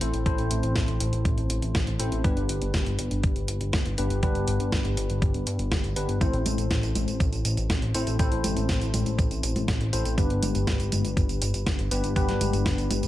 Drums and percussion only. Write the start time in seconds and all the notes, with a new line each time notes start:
0.01 closed hi-hat
0.14 closed hi-hat
0.26 kick, closed hi-hat
0.38 closed hi-hat
0.51 closed hi-hat
0.63 closed hi-hat
0.76 kick, snare, closed hi-hat
0.88 closed hi-hat
1.00 closed hi-hat
1.13 closed hi-hat
1.25 kick, closed hi-hat
1.38 closed hi-hat
1.50 closed hi-hat
1.62 closed hi-hat
1.75 kick, snare, closed hi-hat
1.87 closed hi-hat
2.00 closed hi-hat
2.12 closed hi-hat
2.24 kick, closed hi-hat
2.37 closed hi-hat
2.49 closed hi-hat
2.62 closed hi-hat
2.74 kick, snare, closed hi-hat
2.86 closed hi-hat
2.99 closed hi-hat
3.11 closed hi-hat
3.23 kick, closed hi-hat
3.36 closed hi-hat
3.48 closed hi-hat
3.61 closed hi-hat
3.73 kick, snare, closed hi-hat
3.86 closed hi-hat
3.98 closed hi-hat
4.10 closed hi-hat
4.23 kick, closed hi-hat
4.35 closed hi-hat
4.48 closed hi-hat
4.60 closed hi-hat
4.72 kick, snare, closed hi-hat
4.85 closed hi-hat
4.97 closed hi-hat
5.10 closed hi-hat
5.22 kick, closed hi-hat
5.34 closed hi-hat
5.47 closed hi-hat
5.59 closed hi-hat
5.72 kick, snare, closed hi-hat
5.84 closed hi-hat
5.96 closed hi-hat
6.09 closed hi-hat
6.21 kick, closed hi-hat, tambourine
6.33 closed hi-hat
6.46 closed hi-hat, tambourine, high conga
6.58 closed hi-hat, tambourine
6.71 kick, snare, closed hi-hat, tambourine
6.83 closed hi-hat, tambourine
6.95 closed hi-hat, tambourine, high conga
7.08 closed hi-hat, tambourine
7.20 kick, closed hi-hat, tambourine
7.33 closed hi-hat, tambourine
7.45 closed hi-hat, tambourine
7.57 closed hi-hat, tambourine
7.70 kick, snare, closed hi-hat, tambourine
7.82 closed hi-hat
7.95 closed hi-hat, tambourine
8.07 closed hi-hat, tambourine
8.19 kick, closed hi-hat, tambourine
8.32 closed hi-hat
8.44 closed hi-hat, tambourine, high conga
8.57 closed hi-hat, tambourine
8.69 kick, snare, closed hi-hat, tambourine
8.81 closed hi-hat, tambourine
8.94 closed hi-hat, tambourine, high conga
9.06 closed hi-hat, tambourine
9.19 kick, closed hi-hat, tambourine
9.31 closed hi-hat, tambourine
9.43 closed hi-hat, tambourine
9.56 closed hi-hat, tambourine, high conga
9.68 kick, snare, closed hi-hat, tambourine
9.81 closed hi-hat
9.93 closed hi-hat, tambourine
10.05 closed hi-hat, tambourine
10.18 kick, closed hi-hat, tambourine
10.30 closed hi-hat
10.43 closed hi-hat, tambourine, high conga
10.55 closed hi-hat, tambourine
10.67 kick, snare, closed hi-hat, tambourine
10.80 closed hi-hat, tambourine
10.92 closed hi-hat, tambourine, high conga
11.05 closed hi-hat, tambourine
11.17 kick, closed hi-hat, tambourine
11.29 closed hi-hat, tambourine
11.42 closed hi-hat, tambourine
11.54 closed hi-hat, tambourine
11.66 kick, snare, closed hi-hat, tambourine
11.79 closed hi-hat
11.91 closed hi-hat, tambourine
12.04 closed hi-hat, tambourine
12.16 kick, closed hi-hat, tambourine
12.29 snare, closed hi-hat
12.41 closed hi-hat, tambourine, high conga
12.53 closed hi-hat, tambourine
12.66 kick, snare, closed hi-hat, tambourine
12.78 closed hi-hat, tambourine
12.91 closed hi-hat, tambourine, high conga
13.03 closed hi-hat, tambourine